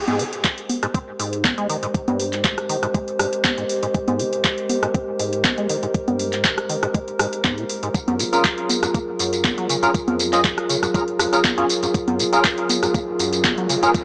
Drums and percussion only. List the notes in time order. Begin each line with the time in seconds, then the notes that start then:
0.08 closed hi-hat, high conga
0.19 open hi-hat
0.33 closed hi-hat
0.44 kick, clap, closed hi-hat
0.58 closed hi-hat
0.69 open hi-hat, high conga
0.83 cross-stick, closed hi-hat
0.94 kick, closed hi-hat
1.20 open hi-hat
1.33 closed hi-hat
1.44 kick, clap, closed hi-hat, high conga
1.58 closed hi-hat
1.69 open hi-hat
1.83 closed hi-hat
1.94 kick, closed hi-hat
2.08 closed hi-hat, high conga
2.19 open hi-hat
2.33 clap, closed hi-hat
2.44 kick, clap, closed hi-hat
2.58 cross-stick, closed hi-hat
2.69 open hi-hat
2.83 cross-stick, closed hi-hat
2.94 kick, closed hi-hat
3.08 closed hi-hat
3.19 cross-stick, open hi-hat
3.33 closed hi-hat
3.44 kick, clap, closed hi-hat, high conga
3.58 closed hi-hat
3.69 open hi-hat
3.83 closed hi-hat
3.94 kick, closed hi-hat
4.08 closed hi-hat, high conga
4.19 open hi-hat
4.33 closed hi-hat
4.44 kick, clap, closed hi-hat
4.58 closed hi-hat
4.69 open hi-hat, high conga
4.83 cross-stick, closed hi-hat
4.94 kick, closed hi-hat
5.19 open hi-hat
5.33 closed hi-hat
5.44 kick, clap, closed hi-hat, high conga
5.58 closed hi-hat
5.69 open hi-hat
5.83 closed hi-hat
5.94 kick, closed hi-hat
6.08 closed hi-hat, high conga
6.19 open hi-hat
6.33 clap, closed hi-hat
6.44 kick, clap, closed hi-hat
6.58 cross-stick, closed hi-hat
6.69 open hi-hat
6.83 cross-stick, closed hi-hat
6.94 kick, closed hi-hat
7.08 closed hi-hat
7.19 cross-stick, open hi-hat
7.33 closed hi-hat
7.44 kick, clap, closed hi-hat, high conga
7.58 closed hi-hat
7.69 open hi-hat
7.83 closed hi-hat
7.94 kick, closed hi-hat, tambourine
8.08 closed hi-hat, high conga
8.19 open hi-hat, tambourine
8.33 closed hi-hat, tambourine
8.44 kick, clap, closed hi-hat, tambourine
8.58 closed hi-hat
8.69 open hi-hat, tambourine, high conga
8.83 cross-stick, closed hi-hat, tambourine
8.94 kick, closed hi-hat, tambourine
9.19 open hi-hat, tambourine
9.33 closed hi-hat, tambourine
9.44 kick, clap, closed hi-hat, tambourine, high conga
9.58 closed hi-hat
9.69 open hi-hat, tambourine
9.83 closed hi-hat, tambourine
9.94 kick, closed hi-hat, tambourine
10.08 closed hi-hat, high conga
10.19 open hi-hat, tambourine
10.33 clap, closed hi-hat, tambourine
10.44 kick, clap, closed hi-hat, tambourine
10.58 cross-stick, closed hi-hat
10.69 open hi-hat, tambourine
10.83 cross-stick, closed hi-hat, tambourine
10.94 kick, closed hi-hat, tambourine
11.08 closed hi-hat
11.19 cross-stick, open hi-hat, tambourine
11.33 closed hi-hat, tambourine
11.44 kick, clap, closed hi-hat, tambourine, high conga
11.58 closed hi-hat
11.69 open hi-hat, tambourine
11.83 closed hi-hat, tambourine
11.94 kick, closed hi-hat, tambourine
12.08 closed hi-hat, high conga
12.19 open hi-hat, tambourine
12.33 closed hi-hat, tambourine
12.44 kick, clap, closed hi-hat, tambourine
12.58 closed hi-hat
12.69 open hi-hat, tambourine, high conga
12.83 cross-stick, closed hi-hat, tambourine
12.94 kick, closed hi-hat, tambourine
13.19 open hi-hat, tambourine
13.33 closed hi-hat, tambourine
13.44 kick, clap, closed hi-hat, tambourine, high conga
13.58 closed hi-hat
13.69 open hi-hat, tambourine
13.83 closed hi-hat, tambourine
13.94 kick, closed hi-hat, tambourine